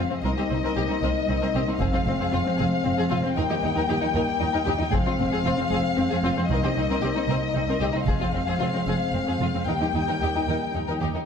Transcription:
Already playing: french horn section G#3 C4, violin section F5
0.10 cello section F2, violin section C4, viola section C4
0.23 double bass section C2, cello section C2, french horn section A#3 D#4, viola section C4, violin section A#4 D#5
0.37 cello section C2, viola section C4, violin section G4
0.50 double bass section C2, cello section C2, viola section C4, violin section D#4
0.63 cello section C2, viola section C4, violin section A#4
0.76 double bass section C2, cello section C2, viola section C4, violin section G4
0.89 cello section C2, viola section C4, violin section D#4
1.02 double bass section C2, cello section C2, viola section C4, violin section A#4
1.28 cello section C2, double bass section C2, viola section C4, violin section D#4
1.41 cello section C2, viola section C4, violin section A#4
1.54 cello section C2, double bass section C2, viola section C4, violin section G4
1.67 cello section C2, viola section C4, violin section D#4
1.79 double bass section F1, cello section F2, french horn section G#3 C4, viola section C4, violin section G#4 F5, taiko
1.93 cello section F2, viola section C4, violin section F4
2.06 double bass section F1, cello section F2, viola section C4, violin section C4
2.19 cello section F2, viola section C4, violin section G#4
2.32 double bass section F1, cello section F2, viola section C4, violin section F4
2.45 cello section F2, viola section C4, violin section C4
2.57 double bass section F1, cello section F2, viola section C4, violin section G#4
2.84 double bass section F1, cello section F2, violin section C4, viola section C4
2.97 cello section F2, viola section C4, violin section G#4
3.10 double bass section F1, cello section F2, viola section C4, violin section F4
3.23 cello section F2, viola section C4, violin section C4
3.36 double bass section D#2, cello section D#2, french horn section G3 A#3, viola section D#4, violin section A#4 G5
3.50 cello section D#2, viola section D#4, violin section G4
3.62 double bass section D#2, cello section D#2, viola section D#4, violin section D#4
3.75 cello section D#2, viola section D#4, violin section A#4
3.89 double bass section D#2, cello section D#2, viola section D#4, violin section G4
4.01 cello section D#2, violin section D#4, viola section D#4
4.14 cello section D#2, double bass section D#2, viola section D#4, violin section A#4
4.39 double bass section D#2, cello section D#2, violin section D#4, viola section D#4
4.53 cello section D#2, viola section D#4, violin section A#4
4.66 cello section D#2, double bass section D#2, viola section D#4, violin section G4
4.79 cello section D#2, violin section D#4, viola section D#4
4.91 double bass section F1, cello section F2, french horn section G#3 C4, viola section C4, violin section G#4 F5, taiko
5.06 cello section F2, viola section C4, violin section F4
5.19 double bass section F1, cello section F2, violin section C4, viola section C4
5.32 cello section F2, viola section C4, violin section G#4
5.45 double bass section F1, cello section F2, viola section C4, violin section F4
5.57 cello section F2, violin section C4, viola section C4
5.71 double bass section F1, cello section F2, viola section C4, violin section G#4
5.96 double bass section F1, cello section F2, violin section C4, viola section C4
6.10 cello section F2, viola section C4, violin section G#4
6.23 double bass section F1, cello section F2, viola section C4, violin section F4
6.37 cello section F2, viola section C4, violin section C4
6.48 cello section C2, double bass section C2, french horn section A#3 D#4, viola section C4, violin section A#4 D#5
6.63 cello section C2, viola section C4, violin section G4
6.75 double bass section C2, cello section C2, viola section C4, violin section D#4
6.90 cello section C2, viola section C4, violin section A#4
7.01 double bass section C2, cello section C2, viola section C4, violin section G4
7.15 cello section C2, viola section C4, violin section D#4
7.27 cello section C2, double bass section C2, viola section C4, violin section A#4
7.53 double bass section C2, cello section C2, viola section C4, violin section D#4
7.67 cello section C2, viola section C4, violin section A#4
7.79 double bass section C2, cello section C2, viola section C4, violin section G4
7.93 cello section C2, viola section C4, violin section D#4
8.06 double bass section F1, cello section F2, french horn section G#3 C4, viola section C4, violin section G#4 F5, taiko
8.20 cello section F2, viola section C4, violin section F4
8.32 double bass section F1, cello section F2, violin section C4, viola section C4
8.45 cello section F2, viola section C4, violin section G#4
8.59 double bass section F1, cello section F2, viola section C4, violin section F4
8.73 cello section F2, violin section C4, viola section C4
8.86 double bass section F1, cello section F2, viola section C4, violin section G#4
9.13 double bass section F1, cello section F2, viola section C4, violin section C4
9.27 cello section F2, viola section C4, violin section G#4
9.39 double bass section F1, cello section F2, viola section C4, violin section F4
9.53 cello section F2, violin section C4, viola section C4
9.65 double bass section D#2, cello section D#2, french horn section G3 A#3, viola section D#4, violin section A#4 G5
9.81 cello section D#2, viola section D#4, violin section G4
9.93 double bass section D#2, cello section D#2, violin section D#4, viola section D#4
10.07 cello section D#2, viola section D#4, violin section A#4
10.21 double bass section D#2, cello section D#2, viola section D#4, violin section G4
10.35 cello section D#2, violin section D#4, viola section D#4
10.47 double bass section D#2, cello section D#2, viola section D#4, violin section A#4
10.74 double bass section D#2, cello section D#2, violin section D#4, viola section D#4
10.87 cello section D#2, viola section D#4, violin section A#4
11.01 cello section D#2, double bass section D#2, viola section D#4, violin section G4
11.14 cello section D#2, violin section D#4, viola section D#4

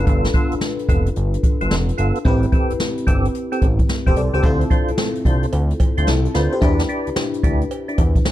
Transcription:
Already playing: fm electric piano D4 F4 A4 B4
0.07 analog synth bass G1, tonewheel organ B3 F4 A4, kick, closed hi-hat
0.25 snare, closed hi-hat
0.34 tonewheel organ B3 F4 A4, kick, closed hi-hat
0.52 analog synth bass F1, closed hi-hat
0.61 snare
0.79 closed hi-hat
0.89 analog synth bass F1, tonewheel organ B3 F4 A4, kick, closed hi-hat
1.06 closed hi-hat
1.16 analog synth bass G1, closed hi-hat
1.34 closed hi-hat
1.43 kick, closed hi-hat
1.61 analog synth bass G1, tonewheel organ B3 F4 A4, closed hi-hat
1.71 analog synth bass F1, snare
1.89 closed hi-hat
1.98 analog synth bass G1, tonewheel organ B3 F4 A4, closed hi-hat
2.15 closed hi-hat
2.25 analog synth bass A1, fm electric piano C4 E4 G4 B4, tonewheel organ C4 G4 A4, kick, closed hi-hat
2.43 closed hi-hat
2.52 tonewheel organ C4 G4 A4, kick, closed hi-hat
2.70 analog synth bass G1, closed hi-hat
2.80 snare
2.97 closed hi-hat
3.07 analog synth bass G1, tonewheel organ C4 G4 A4, kick, closed hi-hat
3.25 closed hi-hat
3.35 closed hi-hat
3.52 tonewheel organ C4 G4 A4, closed hi-hat
3.62 analog synth bass A1, kick, closed hi-hat
3.79 kick, closed hi-hat
3.89 snare
4.06 analog synth bass E1, tonewheel organ C4 G4 A4, fm electric piano G4 C5, kick, closed hi-hat
4.16 analog synth bass C2, fm electric piano A4 D5, closed hi-hat
4.34 analog synth bass C#2, tonewheel organ C4 G4 A4, fm electric piano G4 C5, closed hi-hat
4.43 analog synth bass D2, fm electric piano C4 E4 F4 A4, tonewheel organ D4 F4 C5, kick, closed hi-hat, cowbell
4.61 closed hi-hat
4.70 tonewheel organ D4 F4 C5, kick, closed hi-hat
4.88 analog synth bass C2, closed hi-hat
4.98 snare, cowbell
5.15 closed hi-hat
5.25 analog synth bass C2, tonewheel organ D4 F4 C5, kick, closed hi-hat
5.43 closed hi-hat
5.52 analog synth bass D2, closed hi-hat, cowbell
5.70 closed hi-hat
5.80 kick, closed hi-hat, cowbell
5.98 analog synth bass D2, tonewheel organ D4 F4 C5, closed hi-hat
6.07 analog synth bass C2, fm electric piano E4 A4, snare, cowbell
6.25 closed hi-hat
6.34 analog synth bass D2, tonewheel organ D4 F4 C5, fm electric piano F4 B4, snare, closed hi-hat
6.52 fm electric piano G4 C5, closed hi-hat
6.61 analog synth bass E2, fm electric piano D4 E4 G4 B4, tonewheel organ D4 E4 G4, kick, closed hi-hat, cowbell
6.79 snare, closed hi-hat
6.89 tonewheel organ D4 E4 G4, closed hi-hat
7.07 analog synth bass D2, closed hi-hat
7.16 snare, cowbell
7.34 closed hi-hat
7.43 analog synth bass D2, tonewheel organ D4 E4 G4, kick, closed hi-hat
7.61 closed hi-hat
7.71 closed hi-hat, cowbell
7.88 tonewheel organ D4 E4 G4, closed hi-hat
7.98 analog synth bass E2, kick, closed hi-hat, cowbell
8.15 kick, closed hi-hat
8.25 snare, cowbell

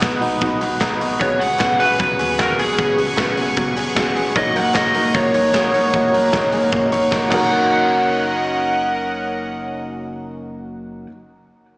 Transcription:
Already playing: clean electric guitar B2 F#3 D#4 F#4, analog synth pad B4 D#5 F#5 D#6
0.01 sub bass F#1, steel-string acoustic guitar F#3 B3 D#4 F#4, clean electric guitar B3, kick, snare, clap, closed hi-hat
0.21 sub bass A#1, steel-string acoustic guitar B3 D#4 F#4, clean electric guitar D#4, open hi-hat
0.40 sub bass B1, steel-string acoustic guitar B2 F#3 B3 D#4 F#4, clean electric guitar F#3, kick, closed hi-hat
0.60 sub bass B1, steel-string acoustic guitar B3 D#4 F#4, clean electric guitar F#4, clap, open hi-hat
0.80 steel-string acoustic guitar F#3 B3 D#4 F#4, clean electric guitar D#4, kick, snare, clap, closed hi-hat
1.00 sub bass B1, steel-string acoustic guitar B3 D#4 F#4, clean electric guitar F#4, open hi-hat
1.20 sub bass C#2, steel-string acoustic guitar C#3 F#3 B3 C#4 G#4, clean electric guitar C#3, upright piano C#4 F#4 G#4 B4, lead electric guitar C#5, analog synth pad F#5 G#5 C#6, kick, closed hi-hat
1.40 steel-string acoustic guitar B3 C#4 G#4, clean electric guitar F#4, lead electric guitar F#5, open hi-hat
1.59 sub bass G#1, steel-string acoustic guitar F#3 B3 C#4 G#4, clean electric guitar B3, kick, snare, clap, closed hi-hat
1.79 sub bass B1, steel-string acoustic guitar B3 C#4 G#4, clean electric guitar F#4, lead electric guitar B4, open hi-hat
1.99 sub bass C#2, steel-string acoustic guitar C#3 F#3 B3 C#4 G#4, clean electric guitar F#3, lead electric guitar B4, kick, closed hi-hat
2.19 sub bass D#2, steel-string acoustic guitar B3 C#4 G#4, clean electric guitar G#4, clap, open hi-hat
2.38 steel-string acoustic guitar F#3 B3 C#4 G#4, clean electric guitar F#4, lead electric guitar A#4, kick, snare, clap, closed hi-hat
2.58 sub bass B1, steel-string acoustic guitar B3 C#4 G#4, clean electric guitar G#4, lead electric guitar G#4, open hi-hat
2.78 sub bass C#2, steel-string acoustic guitar C#3 F#3 B3 C#4 G#4, clean electric guitar C#3, kick, closed hi-hat
2.97 steel-string acoustic guitar B3 C#4 G#4, clean electric guitar F#4, open hi-hat
3.16 sub bass G#1, steel-string acoustic guitar F#3 B3 C#4 G#4, clean electric guitar B3, kick, snare, clap, closed hi-hat
3.36 sub bass B1, steel-string acoustic guitar B3 C#4 G#4, clean electric guitar F#4, open hi-hat
3.56 sub bass C#2, steel-string acoustic guitar C#3 F#3 B3 C#4 G#4, clean electric guitar F#3, kick, closed hi-hat
3.75 sub bass C#2, steel-string acoustic guitar B3 C#4 G#4, clean electric guitar G#4, clap, open hi-hat
3.95 steel-string acoustic guitar F#3 B3 C#4 G#4, clean electric guitar F#4, kick, snare, clap, closed hi-hat
4.15 sub bass F1, steel-string acoustic guitar B3 C#4 G#4, clean electric guitar G#4, open hi-hat
4.35 sub bass F#1, steel-string acoustic guitar F#2 C#3 F#3 A#3 D#4 F#4, clean electric guitar F#3, upright piano D#4 F#4 A#4 C#5, analog synth pad A#4 D#5, lead electric guitar D#5, kick, closed hi-hat
4.55 steel-string acoustic guitar F#3 A#3 D#4 F#4, clean electric guitar A#4, lead electric guitar F#5, open hi-hat
4.74 sub bass C#2, steel-string acoustic guitar F#3 A#3 D#4 F#4, clean electric guitar D#4, lead electric guitar D#5, kick, snare, clap, closed hi-hat
4.94 sub bass F1, steel-string acoustic guitar F#3 A#3 D#4 F#4, clean electric guitar A#4, open hi-hat
5.13 sub bass F#1, steel-string acoustic guitar F#2 C#3 F#3 A#3 D#4 F#4, clean electric guitar A#3, lead electric guitar C#5, kick, closed hi-hat
5.33 sub bass A#1, steel-string acoustic guitar F#3 A#3 D#4 F#4, clean electric guitar C#5, clap, open hi-hat
5.53 steel-string acoustic guitar F#3 A#3 D#4 F#4, clean electric guitar G#4, kick, snare, clap, closed hi-hat
5.64 clean electric guitar A#4
5.73 sub bass F1, steel-string acoustic guitar F#3 A#3 D#4 F#4, clean electric guitar C#5, open hi-hat
5.94 sub bass F#1, steel-string acoustic guitar F#2 C#3 F#3 A#3 D#4 F#4, clean electric guitar F#3, kick, closed hi-hat
6.13 steel-string acoustic guitar F#3 A#3 D#4 F#4, clean electric guitar A#4, open hi-hat
6.32 sub bass C#2, steel-string acoustic guitar F#3 A#3 D#4 F#4, clean electric guitar D#4, kick, snare, clap, closed hi-hat
6.52 sub bass G#1, steel-string acoustic guitar F#3 A#3 D#4 F#4, clean electric guitar G#4, open hi-hat
6.63 clean electric guitar A#4
6.72 sub bass A#1, steel-string acoustic guitar F#2 C#3 F#3 A#3 D#4 F#4, clean electric guitar A#3, kick, closed hi-hat
6.91 sub bass A#1, steel-string acoustic guitar F#3 A#3 D#4 F#4, clean electric guitar C#5, clap, open hi-hat
7.12 steel-string acoustic guitar F#3 A#3 D#4 F#4, clean electric guitar A#4, kick, snare, clap
7.28 sub bass F#1, steel-string acoustic guitar F#2 C#3, clean electric guitar F#3, upright piano D#4 F#4, lead electric guitar F#5, kick, clap, crash
7.32 steel-string acoustic guitar F#3, clean electric guitar A#3 D#4, analog synth pad C#4 A#4 D#5 F#5, upright piano A#4
7.36 steel-string acoustic guitar A#3 D#4, clean electric guitar A#4 C#5
7.42 steel-string acoustic guitar F#4

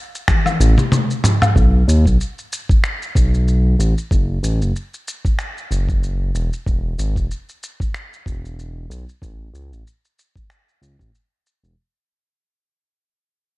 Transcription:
0.15 shaker
0.28 finger snap, kick, high tom, shaker
0.46 high tom, low woodblock, shaker
0.60 analog synth bass A1, shaker
0.78 mid tom, shaker
0.92 mid tom, shaker
1.11 shaker
1.24 mid tom, shaker
1.42 mid tom, low woodblock, shaker
1.56 analog synth bass B1, kick, shaker
1.88 analog synth bass D#2, shaker
2.06 analog synth bass B1, kick, shaker
2.21 shaker
2.39 shaker
2.53 shaker
2.69 kick, shaker
2.84 finger snap, shaker
3.02 shaker
3.15 analog synth bass B1, kick, shaker
3.34 shaker
3.48 shaker
3.79 analog synth bass A1, shaker
3.98 shaker
4.11 analog synth bass F#1, kick, shaker
4.43 analog synth bass A1, shaker
4.61 analog synth bass F#1, shaker
4.76 shaker
4.94 shaker
5.08 shaker
5.25 kick, shaker
5.39 finger snap, shaker
5.58 shaker
5.71 analog synth bass F#1, shaker
5.89 kick, shaker
6.03 shaker
6.35 analog synth bass E1, shaker
6.53 shaker
6.66 analog synth bass E1, kick, shaker
6.98 analog synth bass G#1, shaker
7.16 analog synth bass E1, kick, shaker
7.31 shaker
7.49 shaker
7.63 shaker
7.80 kick, shaker
7.94 finger snap, shaker
8.13 shaker
8.26 analog synth bass E1, kick, shaker
8.45 shaker
8.59 shaker
8.90 analog synth bass B1, shaker
9.09 shaker
9.22 analog synth bass A1, kick, shaker
9.54 analog synth bass C#2, shaker
9.72 analog synth bass A1, shaker
9.87 shaker
10.05 shaker
10.19 shaker
10.36 kick, shaker
10.50 finger snap, shaker
10.69 shaker
10.82 analog synth bass C#2, shaker
10.99 analog synth bass A1, kick, shaker
11.15 shaker
11.46 shaker
11.63 analog synth bass E1, shaker

